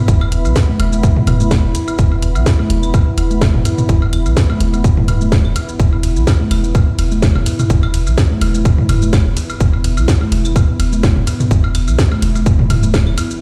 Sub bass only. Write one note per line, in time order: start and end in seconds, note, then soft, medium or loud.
0.08 0.46 E1 loud
0.45 0.54 B1 medium
0.80 1.13 E1 loud
1.27 1.61 E1 loud
1.64 1.73 E1 loud
1.99 2.37 E1 loud
2.35 2.45 B1 medium
2.70 3.04 E1 loud
3.18 3.51 E1 loud
3.54 3.64 E1 medium
3.89 4.27 E1 loud
4.26 4.35 B1 medium
4.60 5.10 E1 loud
5.08 5.46 D1 loud
5.45 5.54 E1 loud
5.80 6.18 E1 loud
6.16 6.25 B1 medium
6.51 6.84 E1 loud
6.99 7.32 E1 loud
7.35 7.45 E1 medium
7.70 8.08 E1 loud
8.07 8.16 B1 medium
8.41 8.75 E1 loud
8.89 9.23 E1 loud
9.26 9.35 E1 medium
9.61 9.99 E1 loud
9.97 10.06 B1 medium
10.32 10.65 E1 loud
10.79 11.13 E1 loud
11.16 11.25 E1 medium
11.51 11.89 E1 loud
11.88 11.97 B1 medium
12.22 12.72 E1 loud
12.70 13.08 D1 medium
13.07 13.16 E1 loud